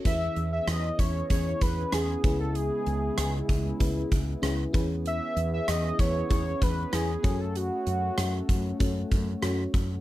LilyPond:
<<
  \new Staff \with { instrumentName = "Analog synth lead" } { \time 4/4 \key e \major \tempo 4 = 96 e''8. e''16 dis''8 cis''8 cis''8 b'8 gis'8. a'16 | gis'2 r2 | e''8. e''16 dis''8 cis''8 cis''8 b'8 gis'8. a'16 | fis'2 r2 | }
  \new Staff \with { instrumentName = "FM electric piano" } { \time 4/4 \key e \major <cis' e' gis' b'>4 r4 <cis' e' gis' b'>8 r8 <cis' e' gis' b'>8 <cis' e' gis' b'>8~ | <cis' e' gis' b'>4 r4 <cis' e' gis' b'>8 r8 <cis' e' gis' b'>8 <cis' e' gis' b'>8~ | <cis' e' gis' b'>4 r4 <cis' e' gis' b'>8 r8 <cis' e' gis' b'>8 <cis' fis' a' cis''>8~ | <cis' fis' a' cis''>4 r4 <cis' fis' a' cis''>8 r8 <cis' fis' a' cis''>8 r8 | }
  \new Staff \with { instrumentName = "FM electric piano" } { \clef bass \time 4/4 \key e \major e4. r2 cis8~ | cis4 r2 r8 e8~ | e4 r2. | r1 | }
  \new Staff \with { instrumentName = "Analog synth pad" } { \time 4/4 \key e \major << { <e b gis'>2.~ <e b gis'>8 <cis gis e'>8~ | <cis gis e'>2.~ <cis gis e'>8 <e b gis'>8~ | <e b gis'>2.~ <e b gis'>8 <a fis'>8~ | <a fis'>1 | } \\ { cis'2.~ cis'8 r8 | r2. r8 cis'8~ | cis'1~ | cis'1 | } >> }
  \new Staff \with { instrumentName = "Fretless electric bass" } { \clef bass \time 4/4 \key e \major e,8 e,8 e,8 e,8 e,8 e,8 e,8 cis,8~ | cis,8 cis,8 cis,8 cis,8 cis,8 cis,8 cis,8 e,8~ | e,8 e,8 e,8 e,8 e,8 e,8 e,8 fis,8~ | fis,8 fis,8 fis,8 fis,8 fis,8 fis,8 fis,8 fis,8 | }
  \new DrumStaff \with { instrumentName = "Drums" } \drummode { \time 4/4 <hh bd>8 hh8 <hh ss>8 <hh bd>8 <hh bd>8 <hh bd>8 <hh ss>8 <hh bd>8 | hh8 hh8 <hh ss>8 <hh bd>8 <hh bd>8 <hh bd>8 <hh ss>8 <hh bd>8 | hh8 hh8 <hh ss>8 <hh bd>8 <hh bd>8 <hh bd>8 <hh ss>8 <hh bd>8 | hh8 hh8 <hh ss>8 <hh bd>8 <hh bd>8 <hh bd>8 <hh ss>8 <hh bd>8 | }
>>